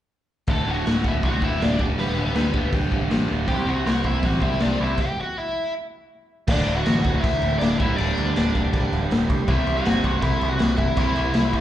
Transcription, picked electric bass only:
0, 0, Header, 1, 2, 480
1, 0, Start_track
1, 0, Tempo, 375235
1, 609, Time_signature, 4, 2, 24, 8
1, 14846, End_track
2, 0, Start_track
2, 0, Title_t, "Picked electric bass"
2, 0, Program_c, 0, 34
2, 612, Note_on_c, 0, 26, 91
2, 807, Note_off_c, 0, 26, 0
2, 857, Note_on_c, 0, 26, 85
2, 1051, Note_off_c, 0, 26, 0
2, 1100, Note_on_c, 0, 26, 81
2, 1293, Note_off_c, 0, 26, 0
2, 1337, Note_on_c, 0, 26, 80
2, 1531, Note_off_c, 0, 26, 0
2, 1576, Note_on_c, 0, 36, 86
2, 1771, Note_off_c, 0, 36, 0
2, 1812, Note_on_c, 0, 26, 87
2, 2009, Note_off_c, 0, 26, 0
2, 2053, Note_on_c, 0, 26, 90
2, 2250, Note_off_c, 0, 26, 0
2, 2295, Note_on_c, 0, 26, 94
2, 2492, Note_off_c, 0, 26, 0
2, 2544, Note_on_c, 0, 26, 92
2, 2737, Note_off_c, 0, 26, 0
2, 2777, Note_on_c, 0, 26, 86
2, 2973, Note_off_c, 0, 26, 0
2, 3024, Note_on_c, 0, 38, 82
2, 3217, Note_off_c, 0, 38, 0
2, 3248, Note_on_c, 0, 26, 89
2, 3449, Note_off_c, 0, 26, 0
2, 3486, Note_on_c, 0, 26, 85
2, 3688, Note_off_c, 0, 26, 0
2, 3734, Note_on_c, 0, 26, 89
2, 3933, Note_off_c, 0, 26, 0
2, 3972, Note_on_c, 0, 33, 82
2, 4171, Note_off_c, 0, 33, 0
2, 4210, Note_on_c, 0, 26, 91
2, 4453, Note_on_c, 0, 36, 94
2, 4472, Note_off_c, 0, 26, 0
2, 4653, Note_off_c, 0, 36, 0
2, 4705, Note_on_c, 0, 36, 83
2, 4900, Note_off_c, 0, 36, 0
2, 4940, Note_on_c, 0, 36, 77
2, 5137, Note_off_c, 0, 36, 0
2, 5173, Note_on_c, 0, 36, 87
2, 5373, Note_off_c, 0, 36, 0
2, 5415, Note_on_c, 0, 33, 83
2, 5615, Note_off_c, 0, 33, 0
2, 5648, Note_on_c, 0, 36, 93
2, 5851, Note_off_c, 0, 36, 0
2, 5901, Note_on_c, 0, 36, 82
2, 6099, Note_off_c, 0, 36, 0
2, 6144, Note_on_c, 0, 36, 92
2, 6341, Note_off_c, 0, 36, 0
2, 8289, Note_on_c, 0, 26, 101
2, 8465, Note_off_c, 0, 26, 0
2, 8535, Note_on_c, 0, 26, 94
2, 8709, Note_off_c, 0, 26, 0
2, 8785, Note_on_c, 0, 33, 89
2, 8956, Note_off_c, 0, 33, 0
2, 9018, Note_on_c, 0, 26, 91
2, 9190, Note_off_c, 0, 26, 0
2, 9254, Note_on_c, 0, 38, 94
2, 9428, Note_off_c, 0, 38, 0
2, 9498, Note_on_c, 0, 26, 95
2, 9670, Note_off_c, 0, 26, 0
2, 9746, Note_on_c, 0, 26, 91
2, 9915, Note_off_c, 0, 26, 0
2, 9978, Note_on_c, 0, 26, 91
2, 10150, Note_off_c, 0, 26, 0
2, 10222, Note_on_c, 0, 26, 106
2, 10392, Note_off_c, 0, 26, 0
2, 10465, Note_on_c, 0, 38, 87
2, 10633, Note_off_c, 0, 38, 0
2, 10702, Note_on_c, 0, 26, 92
2, 10871, Note_off_c, 0, 26, 0
2, 10940, Note_on_c, 0, 26, 89
2, 11110, Note_off_c, 0, 26, 0
2, 11171, Note_on_c, 0, 26, 99
2, 11344, Note_off_c, 0, 26, 0
2, 11416, Note_on_c, 0, 26, 99
2, 11586, Note_off_c, 0, 26, 0
2, 11663, Note_on_c, 0, 26, 93
2, 11831, Note_off_c, 0, 26, 0
2, 11889, Note_on_c, 0, 36, 103
2, 12061, Note_off_c, 0, 36, 0
2, 12129, Note_on_c, 0, 36, 99
2, 12301, Note_off_c, 0, 36, 0
2, 12364, Note_on_c, 0, 36, 86
2, 12537, Note_off_c, 0, 36, 0
2, 12616, Note_on_c, 0, 31, 91
2, 12785, Note_off_c, 0, 31, 0
2, 12851, Note_on_c, 0, 36, 93
2, 13021, Note_off_c, 0, 36, 0
2, 13082, Note_on_c, 0, 36, 92
2, 13255, Note_off_c, 0, 36, 0
2, 13339, Note_on_c, 0, 36, 97
2, 13506, Note_off_c, 0, 36, 0
2, 13578, Note_on_c, 0, 36, 99
2, 13744, Note_off_c, 0, 36, 0
2, 13794, Note_on_c, 0, 31, 100
2, 13969, Note_off_c, 0, 31, 0
2, 14037, Note_on_c, 0, 36, 94
2, 14210, Note_off_c, 0, 36, 0
2, 14288, Note_on_c, 0, 36, 90
2, 14457, Note_off_c, 0, 36, 0
2, 14539, Note_on_c, 0, 36, 79
2, 14704, Note_off_c, 0, 36, 0
2, 14755, Note_on_c, 0, 36, 97
2, 14846, Note_off_c, 0, 36, 0
2, 14846, End_track
0, 0, End_of_file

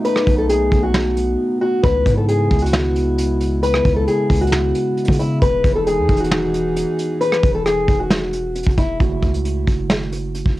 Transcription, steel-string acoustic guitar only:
0, 0, Header, 1, 2, 480
1, 0, Start_track
1, 0, Tempo, 447761
1, 50, Time_signature, 4, 2, 24, 8
1, 11362, End_track
2, 0, Start_track
2, 0, Title_t, "Steel-string acoustic guitar"
2, 0, Program_c, 0, 25
2, 51, Note_on_c, 0, 71, 103
2, 389, Note_off_c, 0, 71, 0
2, 410, Note_on_c, 0, 69, 84
2, 515, Note_off_c, 0, 69, 0
2, 529, Note_on_c, 0, 68, 81
2, 868, Note_off_c, 0, 68, 0
2, 889, Note_on_c, 0, 66, 76
2, 1686, Note_off_c, 0, 66, 0
2, 1729, Note_on_c, 0, 66, 83
2, 1939, Note_off_c, 0, 66, 0
2, 1966, Note_on_c, 0, 71, 110
2, 2306, Note_off_c, 0, 71, 0
2, 2331, Note_on_c, 0, 69, 74
2, 2435, Note_off_c, 0, 69, 0
2, 2451, Note_on_c, 0, 68, 88
2, 2789, Note_off_c, 0, 68, 0
2, 2809, Note_on_c, 0, 66, 79
2, 3847, Note_off_c, 0, 66, 0
2, 3889, Note_on_c, 0, 71, 103
2, 4228, Note_off_c, 0, 71, 0
2, 4248, Note_on_c, 0, 69, 82
2, 4354, Note_off_c, 0, 69, 0
2, 4370, Note_on_c, 0, 68, 80
2, 4708, Note_off_c, 0, 68, 0
2, 4728, Note_on_c, 0, 66, 70
2, 5526, Note_off_c, 0, 66, 0
2, 5569, Note_on_c, 0, 64, 81
2, 5778, Note_off_c, 0, 64, 0
2, 5810, Note_on_c, 0, 71, 109
2, 6148, Note_off_c, 0, 71, 0
2, 6170, Note_on_c, 0, 69, 77
2, 6274, Note_off_c, 0, 69, 0
2, 6291, Note_on_c, 0, 68, 90
2, 6629, Note_off_c, 0, 68, 0
2, 6651, Note_on_c, 0, 66, 77
2, 7688, Note_off_c, 0, 66, 0
2, 7727, Note_on_c, 0, 71, 106
2, 8067, Note_off_c, 0, 71, 0
2, 8091, Note_on_c, 0, 69, 83
2, 8195, Note_off_c, 0, 69, 0
2, 8210, Note_on_c, 0, 68, 88
2, 8548, Note_off_c, 0, 68, 0
2, 8569, Note_on_c, 0, 66, 67
2, 9367, Note_off_c, 0, 66, 0
2, 9410, Note_on_c, 0, 64, 84
2, 9619, Note_off_c, 0, 64, 0
2, 11362, End_track
0, 0, End_of_file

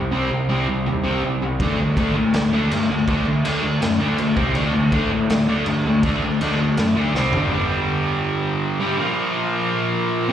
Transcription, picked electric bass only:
0, 0, Header, 1, 2, 480
1, 0, Start_track
1, 0, Tempo, 369686
1, 160, Time_signature, 4, 2, 24, 8
1, 13407, End_track
2, 0, Start_track
2, 0, Title_t, "Picked electric bass"
2, 0, Program_c, 0, 34
2, 0, Note_on_c, 0, 36, 89
2, 155, Note_off_c, 0, 36, 0
2, 188, Note_on_c, 0, 36, 81
2, 401, Note_off_c, 0, 36, 0
2, 419, Note_on_c, 0, 36, 86
2, 636, Note_off_c, 0, 36, 0
2, 649, Note_on_c, 0, 36, 101
2, 871, Note_off_c, 0, 36, 0
2, 893, Note_on_c, 0, 36, 83
2, 1113, Note_off_c, 0, 36, 0
2, 1134, Note_on_c, 0, 39, 92
2, 1354, Note_off_c, 0, 39, 0
2, 1365, Note_on_c, 0, 36, 92
2, 1589, Note_off_c, 0, 36, 0
2, 1610, Note_on_c, 0, 36, 95
2, 1831, Note_off_c, 0, 36, 0
2, 1846, Note_on_c, 0, 36, 98
2, 2070, Note_off_c, 0, 36, 0
2, 2084, Note_on_c, 0, 38, 92
2, 2308, Note_off_c, 0, 38, 0
2, 2325, Note_on_c, 0, 38, 87
2, 2546, Note_off_c, 0, 38, 0
2, 2553, Note_on_c, 0, 38, 98
2, 2782, Note_off_c, 0, 38, 0
2, 2802, Note_on_c, 0, 45, 81
2, 3027, Note_off_c, 0, 45, 0
2, 3041, Note_on_c, 0, 38, 93
2, 3267, Note_off_c, 0, 38, 0
2, 3286, Note_on_c, 0, 38, 93
2, 3509, Note_off_c, 0, 38, 0
2, 3531, Note_on_c, 0, 43, 102
2, 3752, Note_off_c, 0, 43, 0
2, 3773, Note_on_c, 0, 38, 92
2, 3990, Note_off_c, 0, 38, 0
2, 3998, Note_on_c, 0, 38, 93
2, 4225, Note_off_c, 0, 38, 0
2, 4250, Note_on_c, 0, 38, 88
2, 4471, Note_off_c, 0, 38, 0
2, 4492, Note_on_c, 0, 38, 101
2, 4706, Note_off_c, 0, 38, 0
2, 4714, Note_on_c, 0, 38, 80
2, 4943, Note_off_c, 0, 38, 0
2, 4964, Note_on_c, 0, 42, 81
2, 5188, Note_off_c, 0, 42, 0
2, 5207, Note_on_c, 0, 38, 96
2, 5430, Note_off_c, 0, 38, 0
2, 5442, Note_on_c, 0, 38, 100
2, 5662, Note_off_c, 0, 38, 0
2, 5669, Note_on_c, 0, 36, 98
2, 5901, Note_off_c, 0, 36, 0
2, 5928, Note_on_c, 0, 38, 94
2, 6151, Note_off_c, 0, 38, 0
2, 6173, Note_on_c, 0, 38, 90
2, 6387, Note_off_c, 0, 38, 0
2, 6395, Note_on_c, 0, 38, 102
2, 6624, Note_off_c, 0, 38, 0
2, 6647, Note_on_c, 0, 45, 94
2, 6870, Note_off_c, 0, 45, 0
2, 6879, Note_on_c, 0, 38, 93
2, 7107, Note_off_c, 0, 38, 0
2, 7130, Note_on_c, 0, 38, 95
2, 7352, Note_off_c, 0, 38, 0
2, 7361, Note_on_c, 0, 43, 100
2, 7587, Note_off_c, 0, 43, 0
2, 7598, Note_on_c, 0, 38, 104
2, 7826, Note_off_c, 0, 38, 0
2, 7838, Note_on_c, 0, 38, 92
2, 8066, Note_off_c, 0, 38, 0
2, 8078, Note_on_c, 0, 38, 90
2, 8306, Note_off_c, 0, 38, 0
2, 8315, Note_on_c, 0, 38, 104
2, 8545, Note_off_c, 0, 38, 0
2, 8562, Note_on_c, 0, 38, 87
2, 8788, Note_off_c, 0, 38, 0
2, 8807, Note_on_c, 0, 42, 92
2, 9031, Note_off_c, 0, 42, 0
2, 9041, Note_on_c, 0, 38, 91
2, 9265, Note_off_c, 0, 38, 0
2, 9273, Note_on_c, 0, 36, 100
2, 9504, Note_off_c, 0, 36, 0
2, 9512, Note_on_c, 0, 31, 102
2, 9743, Note_off_c, 0, 31, 0
2, 13407, End_track
0, 0, End_of_file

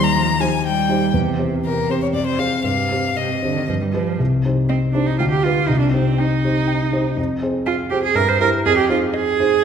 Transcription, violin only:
0, 0, Header, 1, 2, 480
1, 0, Start_track
1, 0, Key_signature, -3, "minor"
1, 0, Tempo, 498339
1, 1102, Time_signature, 3, 2, 24, 8
1, 2065, Tempo, 509338
1, 4945, Tempo, 493016
1, 9269, End_track
2, 0, Start_track
2, 0, Title_t, "Violin"
2, 0, Program_c, 0, 40
2, 32, Note_on_c, 0, 82, 55
2, 393, Note_on_c, 0, 80, 48
2, 407, Note_off_c, 0, 82, 0
2, 629, Note_off_c, 0, 80, 0
2, 638, Note_on_c, 0, 79, 50
2, 1099, Note_off_c, 0, 79, 0
2, 1592, Note_on_c, 0, 70, 48
2, 1838, Note_on_c, 0, 72, 41
2, 1853, Note_off_c, 0, 70, 0
2, 1941, Note_off_c, 0, 72, 0
2, 1947, Note_on_c, 0, 73, 41
2, 1994, Note_off_c, 0, 73, 0
2, 2063, Note_on_c, 0, 74, 48
2, 2171, Note_off_c, 0, 74, 0
2, 2177, Note_on_c, 0, 72, 40
2, 2296, Note_on_c, 0, 77, 45
2, 2310, Note_off_c, 0, 72, 0
2, 2533, Note_off_c, 0, 77, 0
2, 2539, Note_on_c, 0, 77, 48
2, 3025, Note_on_c, 0, 75, 38
2, 3039, Note_off_c, 0, 77, 0
2, 3513, Note_off_c, 0, 75, 0
2, 4471, Note_on_c, 0, 75, 41
2, 4823, Note_off_c, 0, 75, 0
2, 4947, Note_on_c, 0, 79, 37
2, 5305, Note_off_c, 0, 79, 0
2, 5901, Note_on_c, 0, 79, 40
2, 6263, Note_off_c, 0, 79, 0
2, 6383, Note_on_c, 0, 79, 37
2, 6745, Note_off_c, 0, 79, 0
2, 7346, Note_on_c, 0, 80, 43
2, 7703, Note_off_c, 0, 80, 0
2, 7826, Note_on_c, 0, 76, 45
2, 8184, Note_off_c, 0, 76, 0
2, 8777, Note_on_c, 0, 75, 45
2, 9137, Note_off_c, 0, 75, 0
2, 9269, End_track
0, 0, End_of_file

